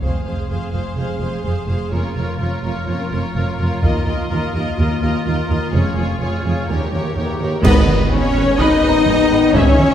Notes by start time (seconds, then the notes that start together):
0.01 F1 F2 G#3 C4 G#4 C5 F5, taiko
0.24 F1 F2 G#4 C5 F5
0.49 F1 F2 G#4 C5 F5
0.72 F1 F2 G#4 C5 F5, taiko
0.97 F1 F2 G#3 C4 G#4 C5 F5
1.20 F1 F2 G#4 C5 F5
1.43 F1 F2 G#4 C5 F5
1.68 F1 F2 G#4 C5 F5
1.90 F1 F2 A#3 C#4 F4 A#4 C#5
2.15 F1 F2 F4 A#4 C#5
2.40 F1 F2 F4 A#4 C#5
2.63 F1 F2 F4 A#4 C#5
2.87 F1 F2 A#3 C#4 F4 A#4 C#5
3.10 F1 F2 F4 A#4 C#5
3.35 F1 F2 F4 A#4 C#5
3.57 F1 F2 F4 A#4 C#5
3.82 D#2 A#3 F4 A#4 D#5, taiko
4.06 D#2 F4 A#4 D#5
4.30 D#2 F4 A#4 D#5
4.53 D#2 F4 A#4 D#5
4.77 D#2 A#3 F4 A#4 D#5
5.02 D#2 F4 A#4 D#5
5.25 D#2 F4 A#4 D#5
5.49 D#2 F4 A#4 D#5
5.73 F1 F2 G#3 C#4 F4 G#4 C#5
5.95 F1 F2 F4 G#4 C#5
6.20 F1 F2 F4 G#4 C#5
6.44 F1 F2 F4 G#4 C#5
6.68 D#2 G3 C#4 G4 A#4 C#5
6.92 D#2 G4 A#4 C#5
7.16 D#2 G4 A#4 C#5
7.40 D#2 G4 A#4 C#5
7.63 G#1 G#2 D#3 B3 B4 D#5, concert bass drum, taiko, crash
7.88 taiko mid
8.10 G#1 C#4 D#4 G#4 C#5
8.34 G#1 G#4 B4
8.58 G#1 D#4 B4 D#5, taiko
8.82 G#1 G#4 B4
9.06 G#1 D#4 G#4, taiko mid
9.29 G#1 G#4 B4
9.52 G#1 G#2 E3 G#3 C#4 G#4 C#5 E5, taiko
9.79 taiko mid